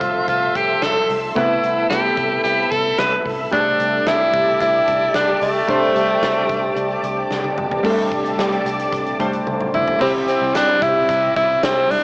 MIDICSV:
0, 0, Header, 1, 7, 480
1, 0, Start_track
1, 0, Tempo, 540541
1, 1210, Time_signature, 4, 2, 24, 8
1, 10688, End_track
2, 0, Start_track
2, 0, Title_t, "String machine"
2, 0, Program_c, 0, 50
2, 0, Note_on_c, 0, 69, 77
2, 0, Note_on_c, 0, 76, 72
2, 0, Note_on_c, 0, 84, 69
2, 0, Note_on_c, 0, 88, 87
2, 1192, Note_off_c, 0, 76, 0
2, 1192, Note_off_c, 0, 84, 0
2, 1209, Note_on_c, 0, 76, 74
2, 1209, Note_on_c, 0, 83, 69
2, 3095, Note_off_c, 0, 69, 0
2, 3095, Note_off_c, 0, 88, 0
2, 3110, Note_off_c, 0, 83, 0
2, 3111, Note_off_c, 0, 76, 0
2, 3127, Note_on_c, 0, 74, 76
2, 3127, Note_on_c, 0, 86, 89
2, 3128, Note_on_c, 0, 81, 73
2, 3129, Note_on_c, 0, 67, 74
2, 6933, Note_off_c, 0, 74, 0
2, 6933, Note_off_c, 0, 86, 0
2, 6934, Note_off_c, 0, 67, 0
2, 6934, Note_off_c, 0, 81, 0
2, 6967, Note_on_c, 0, 86, 82
2, 6968, Note_on_c, 0, 74, 73
2, 6969, Note_on_c, 0, 67, 77
2, 6969, Note_on_c, 0, 81, 70
2, 8870, Note_off_c, 0, 74, 0
2, 8870, Note_off_c, 0, 86, 0
2, 8871, Note_off_c, 0, 67, 0
2, 8871, Note_off_c, 0, 81, 0
2, 10688, End_track
3, 0, Start_track
3, 0, Title_t, "Tenor saxophone"
3, 0, Program_c, 1, 66
3, 0, Note_on_c, 1, 65, 82
3, 248, Note_off_c, 1, 65, 0
3, 254, Note_on_c, 1, 65, 88
3, 498, Note_on_c, 1, 67, 95
3, 511, Note_off_c, 1, 65, 0
3, 734, Note_on_c, 1, 69, 93
3, 747, Note_off_c, 1, 67, 0
3, 972, Note_off_c, 1, 69, 0
3, 1215, Note_on_c, 1, 64, 85
3, 1659, Note_off_c, 1, 64, 0
3, 1682, Note_on_c, 1, 67, 90
3, 2133, Note_off_c, 1, 67, 0
3, 2164, Note_on_c, 1, 67, 90
3, 2407, Note_on_c, 1, 69, 97
3, 2420, Note_off_c, 1, 67, 0
3, 2653, Note_on_c, 1, 71, 96
3, 2666, Note_off_c, 1, 69, 0
3, 2892, Note_off_c, 1, 71, 0
3, 3135, Note_on_c, 1, 62, 104
3, 3618, Note_on_c, 1, 64, 111
3, 3631, Note_off_c, 1, 62, 0
3, 4089, Note_off_c, 1, 64, 0
3, 4095, Note_on_c, 1, 64, 103
3, 4539, Note_off_c, 1, 64, 0
3, 4573, Note_on_c, 1, 62, 89
3, 4795, Note_off_c, 1, 62, 0
3, 4814, Note_on_c, 1, 57, 95
3, 6457, Note_off_c, 1, 57, 0
3, 8652, Note_on_c, 1, 64, 87
3, 8875, Note_off_c, 1, 64, 0
3, 8891, Note_on_c, 1, 60, 83
3, 8999, Note_off_c, 1, 60, 0
3, 9128, Note_on_c, 1, 60, 85
3, 9369, Note_on_c, 1, 62, 97
3, 9383, Note_off_c, 1, 60, 0
3, 9611, Note_on_c, 1, 64, 97
3, 9625, Note_off_c, 1, 62, 0
3, 10085, Note_off_c, 1, 64, 0
3, 10090, Note_on_c, 1, 64, 99
3, 10337, Note_on_c, 1, 60, 94
3, 10351, Note_off_c, 1, 64, 0
3, 10573, Note_on_c, 1, 62, 94
3, 10586, Note_off_c, 1, 60, 0
3, 10688, Note_off_c, 1, 62, 0
3, 10688, End_track
4, 0, Start_track
4, 0, Title_t, "Synth keys"
4, 0, Program_c, 2, 88
4, 0, Control_c, 2, 64, 127
4, 0, Note_on_c, 2, 48, 58
4, 0, Note_on_c, 2, 53, 57
4, 0, Note_on_c, 2, 57, 59
4, 0, Note_on_c, 2, 72, 69
4, 0, Note_on_c, 2, 76, 56
4, 1170, Note_off_c, 2, 57, 0
4, 1173, Note_off_c, 2, 76, 0
4, 1177, Note_off_c, 2, 53, 0
4, 1180, Note_off_c, 2, 72, 0
4, 1201, Note_on_c, 2, 57, 65
4, 1208, Note_on_c, 2, 59, 57
4, 1211, Note_off_c, 2, 48, 0
4, 1211, Note_on_c, 2, 48, 60
4, 1216, Note_on_c, 2, 64, 56
4, 1221, Control_c, 2, 64, 0
4, 1223, Note_on_c, 2, 71, 69
4, 1371, Control_c, 2, 64, 127
4, 1895, Note_off_c, 2, 48, 0
4, 3091, Note_off_c, 2, 57, 0
4, 3094, Note_off_c, 2, 59, 0
4, 3098, Note_off_c, 2, 64, 0
4, 3101, Note_off_c, 2, 71, 0
4, 3121, Note_on_c, 2, 55, 60
4, 3128, Note_on_c, 2, 57, 55
4, 3132, Note_on_c, 2, 48, 62
4, 3135, Note_on_c, 2, 62, 56
4, 3142, Control_c, 2, 64, 0
4, 3142, Note_on_c, 2, 68, 54
4, 3194, Note_off_c, 2, 68, 0
4, 3199, Note_on_c, 2, 69, 70
4, 3286, Control_c, 2, 64, 127
4, 3816, Note_off_c, 2, 48, 0
4, 5010, Note_off_c, 2, 55, 0
4, 5014, Note_off_c, 2, 57, 0
4, 5017, Note_off_c, 2, 62, 0
4, 5041, Note_on_c, 2, 55, 61
4, 5046, Note_on_c, 2, 57, 58
4, 5049, Note_off_c, 2, 69, 0
4, 5051, Note_on_c, 2, 48, 61
4, 5054, Note_on_c, 2, 62, 61
4, 5061, Note_on_c, 2, 72, 69
4, 5735, Note_off_c, 2, 48, 0
4, 6930, Note_off_c, 2, 55, 0
4, 6933, Note_off_c, 2, 57, 0
4, 6937, Note_off_c, 2, 62, 0
4, 6940, Note_off_c, 2, 72, 0
4, 6956, Note_on_c, 2, 55, 75
4, 6962, Note_on_c, 2, 57, 67
4, 6967, Note_on_c, 2, 48, 72
4, 6970, Note_on_c, 2, 62, 68
4, 6976, Note_on_c, 2, 69, 83
4, 6984, Control_c, 2, 64, 0
4, 7148, Control_c, 2, 64, 127
4, 7653, Note_off_c, 2, 48, 0
4, 8139, Note_off_c, 2, 55, 0
4, 8142, Note_off_c, 2, 57, 0
4, 8146, Note_off_c, 2, 62, 0
4, 8149, Note_off_c, 2, 69, 0
4, 8165, Note_on_c, 2, 55, 57
4, 8167, Note_on_c, 2, 57, 52
4, 8173, Note_on_c, 2, 62, 51
4, 8175, Note_on_c, 2, 72, 63
4, 8879, Note_on_c, 2, 60, 67
4, 8888, Note_off_c, 2, 55, 0
4, 8889, Note_off_c, 2, 57, 0
4, 8890, Note_on_c, 2, 64, 60
4, 8891, Note_on_c, 2, 48, 63
4, 8892, Note_off_c, 2, 62, 0
4, 8893, Note_off_c, 2, 72, 0
4, 8900, Note_on_c, 2, 67, 72
4, 8902, Control_c, 2, 64, 0
4, 9052, Control_c, 2, 64, 127
4, 9575, Note_off_c, 2, 48, 0
4, 10688, Note_off_c, 2, 60, 0
4, 10688, Note_off_c, 2, 64, 0
4, 10688, Note_off_c, 2, 67, 0
4, 10688, End_track
5, 0, Start_track
5, 0, Title_t, "Overdriven electric guitar"
5, 0, Program_c, 3, 29
5, 8874, Note_on_c, 3, 48, 86
5, 8897, Note_on_c, 3, 55, 84
5, 8917, Note_on_c, 3, 60, 92
5, 9825, Note_off_c, 3, 48, 0
5, 9835, Note_on_c, 3, 48, 80
5, 9849, Note_off_c, 3, 55, 0
5, 9860, Note_on_c, 3, 55, 85
5, 9875, Note_off_c, 3, 60, 0
5, 9879, Note_on_c, 3, 60, 89
5, 10688, Note_off_c, 3, 48, 0
5, 10688, Note_off_c, 3, 55, 0
5, 10688, Note_off_c, 3, 60, 0
5, 10688, End_track
6, 0, Start_track
6, 0, Title_t, "Picked electric bass"
6, 0, Program_c, 4, 34
6, 10, Note_on_c, 4, 36, 95
6, 183, Note_off_c, 4, 36, 0
6, 249, Note_on_c, 4, 36, 91
6, 422, Note_off_c, 4, 36, 0
6, 492, Note_on_c, 4, 36, 95
6, 665, Note_off_c, 4, 36, 0
6, 729, Note_on_c, 4, 36, 100
6, 903, Note_off_c, 4, 36, 0
6, 970, Note_on_c, 4, 36, 94
6, 1143, Note_off_c, 4, 36, 0
6, 1210, Note_on_c, 4, 36, 91
6, 1383, Note_off_c, 4, 36, 0
6, 1450, Note_on_c, 4, 36, 86
6, 1623, Note_off_c, 4, 36, 0
6, 1689, Note_on_c, 4, 36, 84
6, 1862, Note_off_c, 4, 36, 0
6, 1929, Note_on_c, 4, 36, 93
6, 2102, Note_off_c, 4, 36, 0
6, 2169, Note_on_c, 4, 36, 95
6, 2342, Note_off_c, 4, 36, 0
6, 2412, Note_on_c, 4, 36, 93
6, 2584, Note_off_c, 4, 36, 0
6, 2649, Note_on_c, 4, 36, 94
6, 2822, Note_off_c, 4, 36, 0
6, 2890, Note_on_c, 4, 36, 84
6, 3063, Note_off_c, 4, 36, 0
6, 3129, Note_on_c, 4, 36, 102
6, 3302, Note_off_c, 4, 36, 0
6, 3370, Note_on_c, 4, 36, 91
6, 3543, Note_off_c, 4, 36, 0
6, 3608, Note_on_c, 4, 36, 95
6, 3782, Note_off_c, 4, 36, 0
6, 3850, Note_on_c, 4, 36, 98
6, 4023, Note_off_c, 4, 36, 0
6, 4087, Note_on_c, 4, 36, 93
6, 4261, Note_off_c, 4, 36, 0
6, 4331, Note_on_c, 4, 36, 100
6, 4504, Note_off_c, 4, 36, 0
6, 4570, Note_on_c, 4, 36, 91
6, 4743, Note_off_c, 4, 36, 0
6, 4809, Note_on_c, 4, 36, 97
6, 4983, Note_off_c, 4, 36, 0
6, 5049, Note_on_c, 4, 36, 107
6, 5222, Note_off_c, 4, 36, 0
6, 5288, Note_on_c, 4, 36, 91
6, 5462, Note_off_c, 4, 36, 0
6, 5527, Note_on_c, 4, 36, 95
6, 5701, Note_off_c, 4, 36, 0
6, 5766, Note_on_c, 4, 36, 99
6, 5941, Note_off_c, 4, 36, 0
6, 6004, Note_on_c, 4, 36, 97
6, 6179, Note_off_c, 4, 36, 0
6, 6246, Note_on_c, 4, 36, 96
6, 6420, Note_off_c, 4, 36, 0
6, 6486, Note_on_c, 4, 36, 97
6, 6661, Note_off_c, 4, 36, 0
6, 6728, Note_on_c, 4, 36, 92
6, 6902, Note_off_c, 4, 36, 0
6, 6968, Note_on_c, 4, 36, 95
6, 7141, Note_off_c, 4, 36, 0
6, 7209, Note_on_c, 4, 36, 91
6, 7382, Note_off_c, 4, 36, 0
6, 7445, Note_on_c, 4, 36, 99
6, 7620, Note_off_c, 4, 36, 0
6, 7687, Note_on_c, 4, 36, 93
6, 7861, Note_off_c, 4, 36, 0
6, 7926, Note_on_c, 4, 36, 105
6, 8101, Note_off_c, 4, 36, 0
6, 8170, Note_on_c, 4, 36, 98
6, 8343, Note_off_c, 4, 36, 0
6, 8407, Note_on_c, 4, 36, 91
6, 8581, Note_off_c, 4, 36, 0
6, 8647, Note_on_c, 4, 36, 92
6, 8821, Note_off_c, 4, 36, 0
6, 8889, Note_on_c, 4, 36, 98
6, 9062, Note_off_c, 4, 36, 0
6, 9249, Note_on_c, 4, 36, 100
6, 9336, Note_off_c, 4, 36, 0
6, 9370, Note_on_c, 4, 36, 96
6, 9543, Note_off_c, 4, 36, 0
6, 9609, Note_on_c, 4, 36, 104
6, 9782, Note_off_c, 4, 36, 0
6, 9846, Note_on_c, 4, 36, 104
6, 10021, Note_off_c, 4, 36, 0
6, 10091, Note_on_c, 4, 36, 93
6, 10264, Note_off_c, 4, 36, 0
6, 10329, Note_on_c, 4, 36, 107
6, 10503, Note_off_c, 4, 36, 0
6, 10569, Note_on_c, 4, 36, 96
6, 10688, Note_off_c, 4, 36, 0
6, 10688, End_track
7, 0, Start_track
7, 0, Title_t, "Drums"
7, 10, Note_on_c, 9, 36, 93
7, 11, Note_on_c, 9, 42, 72
7, 99, Note_off_c, 9, 36, 0
7, 100, Note_off_c, 9, 42, 0
7, 249, Note_on_c, 9, 36, 91
7, 250, Note_on_c, 9, 42, 84
7, 338, Note_off_c, 9, 36, 0
7, 339, Note_off_c, 9, 42, 0
7, 492, Note_on_c, 9, 42, 69
7, 493, Note_on_c, 9, 36, 74
7, 580, Note_off_c, 9, 42, 0
7, 581, Note_off_c, 9, 36, 0
7, 730, Note_on_c, 9, 42, 81
7, 731, Note_on_c, 9, 38, 98
7, 819, Note_off_c, 9, 38, 0
7, 819, Note_off_c, 9, 42, 0
7, 974, Note_on_c, 9, 46, 62
7, 1063, Note_off_c, 9, 46, 0
7, 1210, Note_on_c, 9, 36, 102
7, 1211, Note_on_c, 9, 42, 81
7, 1299, Note_off_c, 9, 36, 0
7, 1299, Note_off_c, 9, 42, 0
7, 1451, Note_on_c, 9, 42, 66
7, 1540, Note_off_c, 9, 42, 0
7, 1691, Note_on_c, 9, 42, 63
7, 1692, Note_on_c, 9, 38, 103
7, 1780, Note_off_c, 9, 42, 0
7, 1781, Note_off_c, 9, 38, 0
7, 1930, Note_on_c, 9, 36, 92
7, 1932, Note_on_c, 9, 42, 72
7, 2018, Note_off_c, 9, 36, 0
7, 2021, Note_off_c, 9, 42, 0
7, 2172, Note_on_c, 9, 42, 91
7, 2260, Note_off_c, 9, 42, 0
7, 2411, Note_on_c, 9, 42, 70
7, 2412, Note_on_c, 9, 36, 81
7, 2500, Note_off_c, 9, 42, 0
7, 2501, Note_off_c, 9, 36, 0
7, 2650, Note_on_c, 9, 38, 105
7, 2650, Note_on_c, 9, 42, 81
7, 2739, Note_off_c, 9, 38, 0
7, 2739, Note_off_c, 9, 42, 0
7, 2890, Note_on_c, 9, 46, 64
7, 2891, Note_on_c, 9, 36, 90
7, 2979, Note_off_c, 9, 36, 0
7, 2979, Note_off_c, 9, 46, 0
7, 3130, Note_on_c, 9, 36, 102
7, 3130, Note_on_c, 9, 42, 82
7, 3219, Note_off_c, 9, 36, 0
7, 3219, Note_off_c, 9, 42, 0
7, 3371, Note_on_c, 9, 42, 68
7, 3459, Note_off_c, 9, 42, 0
7, 3610, Note_on_c, 9, 42, 62
7, 3611, Note_on_c, 9, 38, 103
7, 3698, Note_off_c, 9, 42, 0
7, 3700, Note_off_c, 9, 38, 0
7, 3850, Note_on_c, 9, 36, 91
7, 3852, Note_on_c, 9, 42, 74
7, 3938, Note_off_c, 9, 36, 0
7, 3941, Note_off_c, 9, 42, 0
7, 4088, Note_on_c, 9, 36, 86
7, 4090, Note_on_c, 9, 42, 92
7, 4177, Note_off_c, 9, 36, 0
7, 4179, Note_off_c, 9, 42, 0
7, 4330, Note_on_c, 9, 42, 69
7, 4332, Note_on_c, 9, 36, 75
7, 4419, Note_off_c, 9, 42, 0
7, 4421, Note_off_c, 9, 36, 0
7, 4566, Note_on_c, 9, 38, 100
7, 4566, Note_on_c, 9, 42, 79
7, 4655, Note_off_c, 9, 38, 0
7, 4655, Note_off_c, 9, 42, 0
7, 4809, Note_on_c, 9, 46, 66
7, 4898, Note_off_c, 9, 46, 0
7, 5048, Note_on_c, 9, 42, 82
7, 5049, Note_on_c, 9, 36, 95
7, 5137, Note_off_c, 9, 42, 0
7, 5138, Note_off_c, 9, 36, 0
7, 5290, Note_on_c, 9, 42, 70
7, 5378, Note_off_c, 9, 42, 0
7, 5530, Note_on_c, 9, 42, 61
7, 5531, Note_on_c, 9, 38, 104
7, 5619, Note_off_c, 9, 42, 0
7, 5620, Note_off_c, 9, 38, 0
7, 5767, Note_on_c, 9, 36, 90
7, 5767, Note_on_c, 9, 42, 73
7, 5856, Note_off_c, 9, 36, 0
7, 5856, Note_off_c, 9, 42, 0
7, 6006, Note_on_c, 9, 42, 89
7, 6095, Note_off_c, 9, 42, 0
7, 6249, Note_on_c, 9, 42, 69
7, 6338, Note_off_c, 9, 42, 0
7, 6488, Note_on_c, 9, 38, 56
7, 6577, Note_off_c, 9, 38, 0
7, 6609, Note_on_c, 9, 48, 57
7, 6698, Note_off_c, 9, 48, 0
7, 6728, Note_on_c, 9, 45, 84
7, 6817, Note_off_c, 9, 45, 0
7, 6850, Note_on_c, 9, 43, 91
7, 6939, Note_off_c, 9, 43, 0
7, 6968, Note_on_c, 9, 36, 101
7, 6968, Note_on_c, 9, 49, 93
7, 7057, Note_off_c, 9, 36, 0
7, 7057, Note_off_c, 9, 49, 0
7, 7090, Note_on_c, 9, 42, 47
7, 7179, Note_off_c, 9, 42, 0
7, 7208, Note_on_c, 9, 36, 86
7, 7210, Note_on_c, 9, 42, 67
7, 7297, Note_off_c, 9, 36, 0
7, 7298, Note_off_c, 9, 42, 0
7, 7332, Note_on_c, 9, 42, 49
7, 7421, Note_off_c, 9, 42, 0
7, 7451, Note_on_c, 9, 38, 106
7, 7540, Note_off_c, 9, 38, 0
7, 7568, Note_on_c, 9, 42, 48
7, 7657, Note_off_c, 9, 42, 0
7, 7690, Note_on_c, 9, 42, 75
7, 7779, Note_off_c, 9, 42, 0
7, 7809, Note_on_c, 9, 42, 57
7, 7898, Note_off_c, 9, 42, 0
7, 7926, Note_on_c, 9, 36, 91
7, 7926, Note_on_c, 9, 42, 94
7, 8015, Note_off_c, 9, 36, 0
7, 8015, Note_off_c, 9, 42, 0
7, 8048, Note_on_c, 9, 42, 52
7, 8137, Note_off_c, 9, 42, 0
7, 8166, Note_on_c, 9, 42, 69
7, 8170, Note_on_c, 9, 36, 79
7, 8255, Note_off_c, 9, 42, 0
7, 8259, Note_off_c, 9, 36, 0
7, 8286, Note_on_c, 9, 42, 51
7, 8375, Note_off_c, 9, 42, 0
7, 8409, Note_on_c, 9, 48, 57
7, 8498, Note_off_c, 9, 48, 0
7, 8530, Note_on_c, 9, 47, 60
7, 8618, Note_off_c, 9, 47, 0
7, 8649, Note_on_c, 9, 45, 87
7, 8738, Note_off_c, 9, 45, 0
7, 8770, Note_on_c, 9, 43, 89
7, 8859, Note_off_c, 9, 43, 0
7, 8890, Note_on_c, 9, 36, 108
7, 8891, Note_on_c, 9, 49, 92
7, 8978, Note_off_c, 9, 36, 0
7, 8980, Note_off_c, 9, 49, 0
7, 9130, Note_on_c, 9, 42, 72
7, 9219, Note_off_c, 9, 42, 0
7, 9368, Note_on_c, 9, 54, 65
7, 9370, Note_on_c, 9, 42, 69
7, 9372, Note_on_c, 9, 38, 105
7, 9456, Note_off_c, 9, 54, 0
7, 9459, Note_off_c, 9, 42, 0
7, 9460, Note_off_c, 9, 38, 0
7, 9609, Note_on_c, 9, 36, 100
7, 9611, Note_on_c, 9, 42, 80
7, 9698, Note_off_c, 9, 36, 0
7, 9700, Note_off_c, 9, 42, 0
7, 9847, Note_on_c, 9, 36, 97
7, 9848, Note_on_c, 9, 42, 96
7, 9936, Note_off_c, 9, 36, 0
7, 9937, Note_off_c, 9, 42, 0
7, 10090, Note_on_c, 9, 42, 69
7, 10091, Note_on_c, 9, 36, 89
7, 10179, Note_off_c, 9, 42, 0
7, 10180, Note_off_c, 9, 36, 0
7, 10329, Note_on_c, 9, 42, 85
7, 10329, Note_on_c, 9, 54, 64
7, 10330, Note_on_c, 9, 38, 113
7, 10418, Note_off_c, 9, 38, 0
7, 10418, Note_off_c, 9, 42, 0
7, 10418, Note_off_c, 9, 54, 0
7, 10573, Note_on_c, 9, 46, 67
7, 10662, Note_off_c, 9, 46, 0
7, 10688, End_track
0, 0, End_of_file